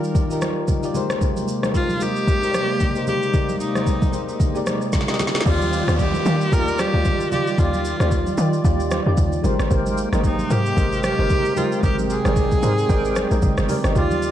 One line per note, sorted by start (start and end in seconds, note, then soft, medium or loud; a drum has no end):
0.00 0.29 D#3 medium
0.00 0.91 D#3 medium
0.00 0.91 G3 medium
0.00 0.30 D#4 medium
0.00 0.91 D#4 medium
0.00 0.31 F4 medium
0.00 0.91 F4 medium
0.00 0.32 G4 medium
0.00 0.32 A#4 medium
0.00 0.85 D5 medium
0.00 0.97 F5 medium
0.00 shaker medium
0.15 kick loud
0.15 shaker medium
0.29 0.71 D#3 medium
0.29 0.71 D#4 medium
0.29 0.71 F4 medium
0.29 0.72 G4 medium
0.29 0.72 A#4 loud
0.29 shaker medium
0.42 cross-stick loud
0.42 high conga medium
0.42 shaker medium
0.68 kick medium
0.68 high conga soft
0.68 low conga medium
0.68 shaker medium
0.82 0.94 D#3 medium
0.82 0.93 D#4 medium
0.82 0.95 F4 medium
0.82 0.94 G4 medium
0.82 0.96 D5 medium
0.82 shaker medium
0.93 5.42 C3 medium
0.93 1.47 G#3 loud
0.93 5.42 G#3 medium
0.93 5.42 A#3 medium
0.93 1.48 D#4 medium
0.93 5.42 G4 medium
0.93 1.48 G4 medium
0.93 1.48 A#4 medium
0.93 1.49 C5 loud
0.93 high conga medium
0.93 low conga medium
0.93 shaker medium
1.10 cross-stick loud
1.10 shaker medium
1.21 kick loud
1.21 low conga medium
1.21 shaker medium
1.37 high conga medium
1.37 shaker medium
1.48 shaker medium
1.62 1.94 G#3 medium
1.62 1.94 D#4 medium
1.62 1.94 G4 medium
1.62 1.95 A#4 medium
1.62 1.95 C5 medium
1.62 cross-stick medium
1.62 high conga medium
1.62 shaker medium
1.74 2.04 F4 loud
1.74 kick medium
1.74 shaker medium
1.89 high conga medium
1.89 shaker soft
2.00 2.33 G#3 medium
2.00 2.33 D#4 medium
2.00 2.34 G4 medium
2.00 3.07 G4 loud
2.00 2.34 A#4 medium
2.00 2.34 D#5 medium
2.00 high conga medium
2.00 shaker medium
2.16 shaker medium
2.28 kick loud
2.28 shaker medium
2.42 2.83 G#3 medium
2.42 2.83 D#4 medium
2.42 2.84 G4 medium
2.42 2.84 A#4 medium
2.42 2.49 C5 medium
2.42 shaker medium
2.51 2.88 D5 medium
2.51 cross-stick loud
2.51 high conga medium
2.51 shaker medium
2.80 kick medium
2.80 high conga soft
2.80 low conga medium
2.80 shaker medium
2.95 3.26 G#3 medium
2.95 3.27 D#4 medium
2.95 3.27 G4 medium
2.95 3.28 A#4 medium
2.95 3.28 C5 medium
2.95 shaker medium
3.07 3.57 G4 loud
3.07 high conga medium
3.07 low conga medium
3.07 shaker medium
3.22 shaker medium
3.32 3.66 G#3 medium
3.32 3.66 D#4 medium
3.32 3.67 G4 medium
3.32 3.67 A#4 medium
3.32 3.67 D5 medium
3.32 kick loud
3.32 low conga medium
3.32 shaker medium
3.49 high conga medium
3.49 shaker medium
3.60 4.36 D#4 medium
3.60 shaker medium
3.74 4.06 G#3 medium
3.74 4.06 D#4 medium
3.74 4.07 G4 medium
3.74 4.07 A#4 medium
3.74 4.07 C5 medium
3.74 cross-stick medium
3.74 high conga medium
3.74 shaker medium
3.86 kick medium
3.86 shaker medium
4.02 kick medium
4.02 high conga medium
4.02 shaker soft
4.12 4.45 G#3 medium
4.12 4.46 D#4 medium
4.12 4.46 G4 medium
4.12 4.47 A#4 medium
4.12 4.47 C5 medium
4.12 high conga medium
4.12 shaker medium
4.29 shaker medium
4.40 kick loud
4.40 low conga medium
4.40 shaker medium
4.54 4.95 G#3 medium
4.54 4.96 D#4 medium
4.54 4.96 G4 medium
4.54 4.97 A#4 medium
4.54 4.97 D5 loud
4.54 shaker medium
4.66 cross-stick loud
4.66 high conga medium
4.66 shaker medium
4.82 shaker medium
4.93 kick medium
4.93 snare medium
4.93 high conga soft
4.93 low conga medium
4.93 shaker medium
5.01 snare medium
5.07 5.39 G#3 medium
5.07 5.39 D#4 medium
5.07 5.40 G4 medium
5.07 5.40 A#4 medium
5.07 5.40 D#5 loud
5.07 snare medium
5.07 shaker medium
5.14 snare medium
5.19 snare medium
5.19 high conga medium
5.19 low conga medium
5.19 shaker medium
5.27 snare medium
5.35 snare loud
5.35 shaker medium
5.41 snare medium
5.45 5.82 D#2 loud
5.45 5.78 D#3 medium
5.45 9.40 D#3 medium
5.45 9.40 G3 medium
5.45 5.79 D#4 medium
5.45 9.40 F4 medium
5.45 5.84 F4 loud
5.45 5.79 F4 medium
5.45 5.96 F4 loud
5.45 5.84 G4 medium
5.45 5.79 G4 medium
5.45 9.40 D5 medium
5.45 5.84 D5 loud
5.45 5.80 D5 medium
5.45 kick loud
5.45 downlifter medium
5.45 low conga medium
5.45 shaker medium
5.62 high conga medium
5.62 shaker medium
5.73 shaker medium
5.87 6.20 D#2 loud
5.87 6.18 D#3 medium
5.87 6.19 D#4 medium
5.87 5.95 F4 medium
5.87 6.19 F4 medium
5.87 5.96 G4 medium
5.87 6.19 G4 medium
5.87 5.96 D5 medium
5.87 6.20 D5 medium
5.87 cross-stick medium
5.87 high conga medium
5.87 shaker medium
5.99 6.54 G4 loud
5.99 kick medium
5.99 shaker medium
6.14 high conga medium
6.14 shaker soft
6.25 6.47 D#3 medium
6.25 6.54 D#3 loud
6.25 6.48 D#4 medium
6.25 6.36 F4 medium
6.25 6.48 F4 medium
6.25 6.36 G4 medium
6.25 6.48 G4 medium
6.25 6.36 D5 medium
6.25 6.49 D5 medium
6.25 high conga medium
6.25 shaker loud
6.41 shaker medium
6.51 6.88 D#2 loud
6.51 6.84 D#3 medium
6.51 6.85 D#4 medium
6.51 6.90 F4 medium
6.51 6.85 F4 medium
6.51 6.91 G4 medium
6.51 6.85 G4 medium
6.51 6.81 A#4 loud
6.51 6.91 D5 loud
6.51 6.86 D5 medium
6.51 kick loud
6.51 shaker medium
6.68 shaker medium
6.79 7.32 G4 loud
6.79 cross-stick loud
6.79 high conga medium
6.79 shaker medium
6.93 7.04 D2 medium
6.93 7.25 D#3 medium
6.93 7.25 D#4 medium
6.93 7.29 F4 medium
6.93 7.25 F4 medium
6.93 7.29 G4 medium
6.93 7.26 G4 medium
6.93 7.29 D5 medium
6.93 7.26 D5 medium
7.05 kick loud
7.05 high conga medium
7.05 low conga medium
7.05 shaker medium
7.20 shaker medium
7.30 7.53 D#3 medium
7.30 7.54 D#4 medium
7.30 7.57 F4 medium
7.30 7.54 F4 medium
7.30 7.57 G4 medium
7.30 7.61 G4 medium
7.30 7.54 G4 medium
7.30 7.57 D5 medium
7.30 7.55 D5 medium
7.30 high conga medium
7.30 low conga medium
7.30 shaker medium
7.47 shaker medium
7.57 7.95 D#2 loud
7.57 7.90 D#3 medium
7.57 7.91 D#4 medium
7.57 7.96 F4 loud
7.57 7.91 F4 medium
7.57 8.38 F4 medium
7.57 7.97 G4 medium
7.57 7.92 G4 medium
7.57 7.97 D5 loud
7.57 7.92 D5 medium
7.57 kick loud
7.57 low conga medium
7.57 shaker medium
7.74 high conga medium
7.74 shaker medium
7.85 shaker medium
7.99 8.33 D#2 loud
7.99 8.31 D#3 medium
7.99 8.31 D#4 medium
7.99 8.08 F4 medium
7.99 8.31 F4 medium
7.99 8.08 G4 medium
7.99 8.32 G4 medium
7.99 8.08 D5 medium
7.99 8.32 D5 medium
7.99 cross-stick medium
7.99 high conga medium
7.99 shaker medium
8.11 kick medium
8.11 shaker medium
8.26 high conga medium
8.26 shaker soft
8.37 8.60 D#3 medium
8.37 8.61 D#3 loud
8.37 8.60 D#4 medium
8.37 8.48 F4 medium
8.37 8.60 F4 medium
8.37 8.49 G4 medium
8.37 8.61 G4 medium
8.37 8.49 D5 medium
8.37 8.61 D5 loud
8.37 high conga medium
8.37 shaker medium
8.53 shaker medium
8.63 9.01 D#2 loud
8.63 8.97 D#3 medium
8.63 8.97 D#4 medium
8.63 9.03 F4 loud
8.63 8.97 F4 medium
8.63 9.03 G4 medium
8.63 8.98 G4 medium
8.63 9.03 D5 loud
8.63 8.98 D5 loud
8.63 kick loud
8.63 shaker medium
8.80 shaker medium
8.91 cross-stick loud
8.91 high conga medium
8.91 shaker medium
9.05 9.16 F2 medium
9.05 9.37 D#3 medium
9.05 9.37 D#4 medium
9.05 9.14 F4 medium
9.05 9.38 F4 medium
9.05 9.14 G4 medium
9.05 9.38 G4 medium
9.05 9.14 D5 medium
9.05 9.38 D5 loud
9.17 9.41 D#2 medium
9.17 kick medium
9.17 high conga medium
9.17 low conga medium
9.17 shaker medium
9.33 shaker medium
9.43 9.57 G#1 loud
9.43 13.92 C3 medium
9.43 9.97 G#3 loud
9.43 13.92 G#3 medium
9.43 11.55 A#3 medium
9.43 9.97 D#4 loud
9.43 9.55 G4 medium
9.43 9.97 G4 medium
9.43 9.55 A#4 medium
9.43 9.98 A#4 medium
9.43 9.55 C5 medium
9.43 9.98 C5 loud
9.43 13.92 G5 loud
9.43 high conga medium
9.43 low conga medium
9.43 shaker medium
9.59 9.69 G#1 medium
9.59 cross-stick loud
9.59 shaker medium
9.71 10.07 G#1 loud
9.71 10.09 G4 loud
9.71 10.09 A#4 medium
9.71 10.09 C5 loud
9.71 kick loud
9.71 low conga medium
9.71 shaker medium
9.86 high conga medium
9.86 shaker medium
9.98 shaker medium
10.12 10.45 G#1 loud
10.12 10.43 G#3 medium
10.12 10.44 D#4 medium
10.12 10.20 G4 medium
10.12 10.44 G4 medium
10.12 10.20 A#4 medium
10.12 10.44 A#4 medium
10.12 10.21 C5 medium
10.12 10.45 D#5 medium
10.12 cross-stick medium
10.12 high conga medium
10.12 shaker medium
10.24 10.53 D#4 medium
10.24 kick medium
10.24 shaker medium
10.39 high conga medium
10.39 shaker soft
10.49 10.73 G#2 medium
10.49 10.72 G#3 medium
10.49 10.72 D#4 medium
10.49 10.61 G4 medium
10.49 10.73 G4 medium
10.49 11.04 G4 loud
10.49 10.61 A#4 medium
10.49 10.73 A#4 medium
10.49 10.61 C5 medium
10.49 10.73 C5 medium
10.49 high conga medium
10.49 shaker medium
10.66 shaker medium
10.76 11.13 G#1 loud
10.76 11.09 G#3 medium
10.76 11.10 D#4 medium
10.76 11.15 G4 medium
10.76 11.10 G4 medium
10.76 11.15 A#4 medium
10.76 11.10 A#4 medium
10.76 11.15 C5 loud
10.76 11.11 D#5 medium
10.76 kick loud
10.76 shaker medium
10.93 shaker medium
11.03 11.59 G4 loud
11.03 cross-stick loud
11.03 high conga medium
11.03 shaker medium
11.18 11.29 G1 loud
11.18 11.49 G#3 medium
11.18 11.50 D#4 medium
11.18 11.54 G4 medium
11.18 11.50 G4 medium
11.18 11.54 A#4 medium
11.18 11.51 A#4 medium
11.18 11.54 C5 medium
11.18 11.51 C5 medium
11.30 kick loud
11.30 high conga medium
11.30 low conga medium
11.30 shaker medium
11.45 shaker medium
11.55 11.78 G#3 medium
11.55 13.93 C4 medium
11.55 11.79 D#4 medium
11.55 11.83 F4 loud
11.55 11.81 G4 medium
11.55 11.79 G4 medium
11.55 11.81 A#4 medium
11.55 11.79 A#4 medium
11.55 11.82 C5 medium
11.55 11.80 D#5 medium
11.55 high conga medium
11.55 low conga medium
11.55 shaker medium
11.72 shaker medium
11.82 12.19 G#1 loud
11.82 12.15 G#3 medium
11.82 12.16 D#4 medium
11.82 12.21 G4 loud
11.82 12.16 G4 medium
11.82 11.96 G4 loud
11.82 12.21 A#4 medium
11.82 12.16 A#4 medium
11.82 12.22 C5 loud
11.82 12.17 D#5 medium
11.82 kick loud
11.82 low conga medium
11.82 shaker medium
11.99 high conga medium
11.99 shaker medium
12.10 13.65 G#4 loud
12.10 shaker medium
12.24 12.58 G#1 loud
12.24 12.56 G#3 medium
12.24 12.56 D#4 medium
12.24 12.33 G4 medium
12.24 12.33 A#4 medium
12.24 12.57 A#4 medium
12.24 12.33 C5 medium
12.24 12.57 D5 medium
12.24 12.56 G5 medium
12.24 cross-stick medium
12.24 high conga medium
12.24 shaker medium
12.36 kick medium
12.36 shaker medium
12.51 kick medium
12.51 high conga medium
12.51 shaker soft
12.62 12.86 G#2 loud
12.62 12.84 G#3 medium
12.62 12.85 D#4 medium
12.62 12.73 G4 medium
12.62 12.85 G4 medium
12.62 12.73 A#4 medium
12.62 12.85 A#4 medium
12.62 12.73 C5 medium
12.62 12.86 C5 medium
12.62 high conga medium
12.62 shaker loud
12.78 shaker medium
12.88 13.26 G#1 loud
12.88 13.21 G#3 medium
12.88 13.22 D#4 medium
12.88 13.28 A#4 medium
12.88 13.23 A#4 medium
12.88 13.28 C5 loud
12.88 13.23 D5 loud
12.88 13.28 G5 medium
12.88 13.22 G5 medium
12.88 kick loud
12.88 shaker medium
13.05 shaker medium
13.16 cross-stick loud
13.16 high conga medium
13.16 shaker medium
13.30 13.41 A#1 loud
13.30 13.62 G#3 medium
13.30 13.62 D#4 medium
13.30 13.39 G4 medium
13.30 13.39 A#4 medium
13.30 13.63 A#4 medium
13.30 13.39 C5 medium
13.30 13.63 D#5 loud
13.30 13.62 G5 medium
13.30 shaker medium
13.42 13.56 G#1 loud
13.42 kick loud
13.42 high conga medium
13.42 low conga medium
13.42 shaker medium
13.58 13.68 G1 loud
13.58 cross-stick loud
13.58 shaker medium
13.68 13.90 G#3 loud
13.68 13.91 D#4 medium
13.68 13.79 G4 medium
13.68 13.91 G4 medium
13.68 13.80 A#4 medium
13.68 13.92 A#4 medium
13.68 13.80 C5 medium
13.68 13.92 D5 loud
13.68 open hi-hat medium
13.68 high conga medium
13.68 low conga medium
13.68 shaker medium
13.84 13.97 G1 medium
13.84 cross-stick loud
13.84 shaker medium
13.94 14.31 D#2 loud
13.94 14.28 D#3 medium
13.94 14.31 D#3 medium
13.94 14.31 G3 medium
13.94 14.28 D#4 medium
13.94 14.31 F4 loud
13.94 14.28 F4 medium
13.94 14.31 F4 medium
13.94 14.31 G4 medium
13.94 14.29 G4 medium
13.94 14.31 D5 medium
13.94 14.31 D5 loud
13.94 14.29 D5 medium
13.94 kick loud
13.94 low conga medium
13.94 shaker medium
14.11 high conga medium
14.11 shaker medium
14.22 shaker medium